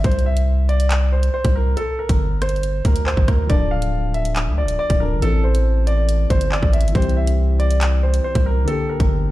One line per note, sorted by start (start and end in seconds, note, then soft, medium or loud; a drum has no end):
0.04 1.30 C2 loud
0.04 0.24 C5 medium
0.04 kick loud
0.04 closed hi-hat medium
0.11 closed hi-hat soft
0.19 closed hi-hat soft
0.26 0.66 E5 medium
0.37 closed hi-hat medium
0.69 1.10 D5 medium
0.69 closed hi-hat soft
0.80 closed hi-hat medium
0.91 clap loud
0.91 closed hi-hat medium
1.12 1.32 C5 medium
1.23 closed hi-hat medium
1.34 1.54 C5 medium
1.45 1.76 C2 loud
1.45 kick loud
1.45 closed hi-hat medium
1.56 1.75 A#4 medium
1.77 1.97 A4 medium
1.77 closed hi-hat medium
1.99 2.39 A#4 medium
2.09 2.82 G1 loud
2.09 kick loud
2.09 closed hi-hat medium
2.42 2.82 C5 medium
2.42 cross-stick medium
2.42 closed hi-hat medium
2.49 closed hi-hat medium
2.56 closed hi-hat soft
2.63 closed hi-hat medium
2.85 3.16 D2 loud
2.85 3.05 A#4 medium
2.85 kick medium
2.85 closed hi-hat medium
2.96 closed hi-hat medium
3.06 3.26 C5 medium
3.06 clap loud
3.17 3.28 G1 loud
3.17 kick loud
3.28 3.49 D2 loud
3.28 3.48 A#4 medium
3.28 kick loud
3.28 cross-stick medium
3.28 closed hi-hat medium
3.47 4.48 D1 loud
3.47 4.96 F3 medium
3.47 4.98 D4 medium
3.47 3.69 D5 medium
3.47 kick loud
3.47 closed hi-hat medium
3.52 4.99 A4 medium
3.71 4.12 F5 medium
3.82 closed hi-hat medium
4.14 4.55 E5 medium
4.14 closed hi-hat soft
4.25 closed hi-hat medium
4.36 clap loud
4.36 closed hi-hat medium
4.47 4.64 D2 loud
4.58 4.77 D5 medium
4.63 4.78 D1 loud
4.68 closed hi-hat medium
4.79 4.99 D5 medium
4.90 5.13 D1 loud
4.90 kick loud
4.90 closed hi-hat medium
4.99 5.21 F3 medium
4.99 5.22 D4 soft
4.99 5.23 A4 medium
4.99 5.20 A#4 medium
5.11 5.22 F1 loud
5.20 6.26 A1 loud
5.20 6.90 E3 medium
5.20 6.92 C4 medium
5.20 5.42 A4 loud
5.20 closed hi-hat medium
5.25 6.93 A4 medium
5.44 5.84 C5 medium
5.55 closed hi-hat medium
5.87 6.28 D5 medium
5.87 closed hi-hat medium
6.09 closed hi-hat medium
6.30 6.61 G1 loud
6.30 6.50 C5 medium
6.30 kick medium
6.30 closed hi-hat medium
6.41 closed hi-hat medium
6.52 6.72 D5 medium
6.52 clap loud
6.63 6.86 A1 loud
6.63 kick loud
6.73 6.93 E5 medium
6.73 closed hi-hat medium
6.81 6.94 G1 loud
6.81 closed hi-hat medium
6.88 closed hi-hat medium
6.92 8.20 C2 loud
6.92 8.63 E3 medium
6.92 8.64 C4 medium
6.92 7.15 C5 medium
6.92 kick loud
6.92 closed hi-hat medium
6.98 8.66 G4 medium
7.02 closed hi-hat soft
7.09 closed hi-hat soft
7.17 7.57 E5 medium
7.27 closed hi-hat medium
7.60 8.00 D5 medium
7.60 closed hi-hat soft
7.71 closed hi-hat medium
7.81 clap loud
7.81 closed hi-hat medium
8.03 8.23 C5 medium
8.14 closed hi-hat medium
8.24 8.44 C5 medium
8.35 8.66 C2 loud
8.35 kick loud
8.35 closed hi-hat medium
8.46 8.66 A#4 medium
8.65 9.31 D3 medium
8.65 9.31 A#3 medium
8.65 8.87 A4 medium
8.65 closed hi-hat medium
8.70 9.31 G4 medium
8.89 9.30 A#4 medium
9.00 9.31 G1 loud
9.00 kick loud
9.00 closed hi-hat medium